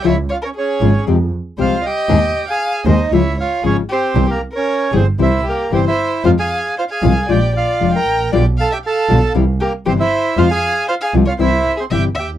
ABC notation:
X:1
M:4/4
L:1/16
Q:1/4=116
K:Fm
V:1 name="Violin"
d2 d B A4 z4 c2 e2- | e3 f3 c2 d2 d2 A2 G2- | G G2 B3 A2 c2 G2 G c3 | c f3 c f3 =d2 d3 g3 |
=d2 f =e f4 z2 G2 G c3 | c f3 c f2 d c3 A =e2 e2 |]
V:2 name="Bandoneon"
[=E=e]2 [Ff] [Dd] [Dd]4 z4 [Ff]2 [Gg]2- | [Gg]3 [Aa]3 [Ee]2 [=E=e]2 [Ff]2 [Dd]2 [Cc]2- | [Cc] [B,B]2 [Dd]3 [Cc]2 [=E=e]2 [B,B]2 [Cc] [Ee]3 | [Ff] [Aa]3 [Ff] [Aa]3 [Gg]2 [Ff]3 [Bb]3 |
[Gg]2 [=A=a] [Gg] [Aa]4 z2 [B,B]2 [Cc] [=E=e]3 | [Ff] [Aa]3 [Ff] [Aa]2 [Ff] [=E=e]3 [Cc] [Gg]2 [Gg]2 |]
V:3 name="Nylon-string guitar" clef=bass
[D,F,A,DF]2 z4 [D,F,A,DF]2 [C,F,A,CG]2 z2 [C,F,A,CG]2 z2 | [E,A,CEA]2 z4 [E,A,CEA]2 [D,F,A,DF]2 z2 [D,F,A,DF]2 z2 | [C,=E,G,C=E]2 z4 [C,E,G,CE]2 [C,E,G,CE]2 z2 [C,E,G,CE]2 z2 | [C,F,A,CF]2 z4 [C,F,A,CF]2 [F,A,=DF]2 z2 [F,A,DF]2 z2 |
[=B,,=D,G,=B,F]2 z4 [B,,D,G,B,F]2 [C,=E,G,C=E]2 z2 [C,E,G,CE]2 z2 | [C,F,A,CF]2 z4 [C,F,A,CF]2 [C,=E,G,C=E]2 z2 [C,E,G,CE]2 z2 |]
V:4 name="Double bass" clef=bass
D,,2 z4 A,,,2 F,,2 z2 C,,2 z2 | E,,2 z4 E,,2 D,,2 z2 A,,,2 z2 | C,,2 z4 G,,,2 C,,2 z2 G,,,2 z2 | F,,2 z4 C,,2 B,,,2 z2 F,,,2 =A,,,2 |
=B,,,2 z4 B,,,2 C,,2 z2 G,,,2 z2 | F,,2 z4 C,,2 C,,2 z2 G,,,2 E,,2 |]